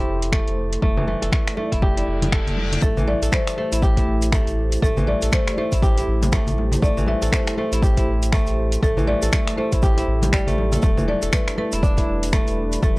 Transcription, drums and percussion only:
0.22 closed hi-hat medium
0.32 finger snap medium
0.32 kick loud
0.32 muted conga medium
0.48 closed hi-hat soft
0.73 closed hi-hat medium
0.82 kick loud
0.82 muted conga medium
0.82 high conga medium
0.97 low conga loud
1.08 high conga medium
1.22 closed hi-hat medium
1.22 muted conga soft
1.32 finger snap loud
1.32 kick loud
1.32 high conga medium
1.48 finger snap medium
1.48 closed hi-hat soft
1.57 muted conga medium
1.57 high conga medium
1.72 kick medium
1.72 closed hi-hat medium
1.82 kick loud
1.97 closed hi-hat soft
1.97 muted conga soft
2.22 closed hi-hat medium
2.22 high conga loud
2.22 low conga medium
2.32 finger snap loud
2.32 kick loud
2.47 closed hi-hat soft
2.47 low conga medium
2.57 high conga medium
2.72 closed hi-hat medium
2.72 low conga medium
2.82 kick loud
2.82 muted conga medium
2.82 high conga medium
2.82 shaker medium
2.97 low conga loud
2.97 shaker soft
3.08 high conga medium
3.23 closed hi-hat medium
3.23 muted conga soft
3.23 shaker medium
3.32 finger snap loud
3.32 kick loud
3.32 high conga medium
3.32 shaker medium
3.47 finger snap medium
3.47 closed hi-hat soft
3.47 shaker soft
3.58 muted conga soft
3.58 high conga medium
3.72 closed hi-hat medium
3.72 shaker medium
3.82 kick loud
3.82 shaker medium
3.97 kick medium
3.97 closed hi-hat soft
3.97 muted conga soft
3.97 shaker soft
4.22 closed hi-hat medium
4.22 shaker medium
4.32 finger snap loud
4.32 kick loud
4.32 muted conga medium
4.32 shaker medium
4.47 closed hi-hat soft
4.47 shaker soft
4.72 closed hi-hat medium
4.72 shaker medium
4.82 kick loud
4.82 muted conga soft
4.82 high conga medium
4.82 shaker medium
4.97 low conga loud
4.97 shaker soft
5.08 high conga medium
5.22 closed hi-hat medium
5.22 muted conga soft
5.22 shaker medium
5.32 finger snap loud
5.32 kick loud
5.32 high conga medium
5.32 shaker medium
5.47 finger snap medium
5.47 closed hi-hat soft
5.47 shaker soft
5.57 muted conga medium
5.57 high conga medium
5.72 kick medium
5.72 closed hi-hat medium
5.72 shaker medium
5.82 kick loud
5.82 shaker medium
5.98 closed hi-hat soft
5.98 muted conga soft
5.98 shaker soft
6.23 closed hi-hat medium
6.23 high conga loud
6.23 low conga medium
6.23 shaker medium
6.32 finger snap loud
6.32 kick loud
6.32 shaker medium
6.47 closed hi-hat soft
6.47 low conga medium
6.47 shaker soft
6.58 high conga medium
6.72 closed hi-hat medium
6.72 low conga medium
6.72 shaker medium
6.82 kick loud
6.82 muted conga soft
6.82 high conga medium
6.82 shaker medium
6.97 low conga loud
6.97 shaker soft
7.06 high conga medium
7.22 closed hi-hat medium
7.22 muted conga soft
7.22 shaker medium
7.32 finger snap loud
7.32 kick loud
7.32 high conga medium
7.32 shaker medium
7.47 finger snap medium
7.47 closed hi-hat soft
7.47 shaker soft
7.57 muted conga soft
7.57 high conga medium
7.72 closed hi-hat medium
7.72 shaker medium
7.82 kick loud
7.82 shaker medium
7.97 kick medium
7.97 closed hi-hat soft
7.97 muted conga soft
7.97 shaker soft
8.23 closed hi-hat medium
8.23 shaker medium
8.33 finger snap loud
8.33 kick loud
8.33 muted conga medium
8.33 shaker medium
8.47 closed hi-hat soft
8.47 shaker soft
8.72 closed hi-hat medium
8.72 shaker medium
8.83 kick loud
8.83 muted conga soft
8.83 high conga medium
8.83 shaker medium
8.97 low conga loud
8.97 shaker soft
9.07 high conga medium
9.22 closed hi-hat medium
9.22 muted conga soft
9.22 shaker medium
9.32 finger snap loud
9.32 kick loud
9.32 high conga medium
9.32 shaker medium
9.48 finger snap medium
9.48 closed hi-hat soft
9.48 shaker soft
9.58 muted conga soft
9.58 high conga medium
9.72 kick medium
9.72 closed hi-hat soft
9.72 shaker medium
9.82 kick loud
9.82 shaker medium
9.98 closed hi-hat soft
9.98 muted conga soft
9.98 shaker soft
10.22 closed hi-hat medium
10.22 high conga loud
10.22 low conga medium
10.22 shaker medium
10.33 finger snap loud
10.33 kick loud
10.33 muted conga medium
10.33 shaker medium
10.47 closed hi-hat soft
10.47 low conga medium
10.47 shaker soft
10.58 high conga medium
10.72 closed hi-hat soft
10.72 low conga medium
10.72 shaker medium
10.82 kick loud
10.82 muted conga soft
10.82 high conga medium
10.82 shaker medium
10.97 low conga loud
10.97 shaker soft
11.08 high conga medium
11.22 closed hi-hat medium
11.22 muted conga soft
11.22 shaker medium
11.32 finger snap loud
11.32 kick loud
11.32 high conga medium
11.32 shaker medium
11.48 finger snap medium
11.48 closed hi-hat soft
11.48 shaker soft
11.58 muted conga soft
11.58 high conga medium
11.72 closed hi-hat soft
11.72 shaker medium
11.83 kick loud
11.83 shaker medium
11.97 kick medium
11.97 closed hi-hat soft
11.97 muted conga soft
11.97 shaker soft
12.23 closed hi-hat medium
12.23 shaker medium
12.32 finger snap loud
12.32 kick loud
12.32 muted conga medium
12.32 shaker medium
12.47 closed hi-hat soft
12.47 shaker soft
12.72 closed hi-hat medium
12.72 shaker medium
12.82 kick loud
12.82 muted conga medium
12.82 high conga medium
12.82 shaker medium

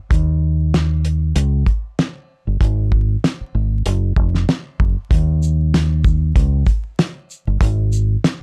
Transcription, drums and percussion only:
0.11 kick loud
0.11 closed hi-hat medium
0.74 snare loud
0.74 closed hi-hat medium
1.05 closed hi-hat soft
1.36 closed hi-hat medium
1.66 kick medium
1.66 closed hi-hat medium
1.99 snare loud
1.99 closed hi-hat medium
2.61 kick loud
2.61 closed hi-hat medium
2.92 kick medium
3.24 snare loud
3.24 closed hi-hat medium
3.86 closed hi-hat medium
4.16 kick medium
4.35 snare soft
4.49 snare loud
4.49 closed hi-hat medium
4.80 kick medium
5.11 kick loud
5.11 closed hi-hat medium
5.43 shaker medium
5.74 snare loud
5.74 closed hi-hat medium
6.05 kick loud
6.05 shaker soft
6.36 kick medium
6.36 closed hi-hat medium
6.67 kick loud
6.67 closed hi-hat soft
6.67 shaker medium
6.99 snare loud
6.99 closed hi-hat medium
7.30 shaker soft
7.61 kick loud
7.61 closed hi-hat medium
7.93 shaker medium
8.24 snare loud
8.24 closed hi-hat loud

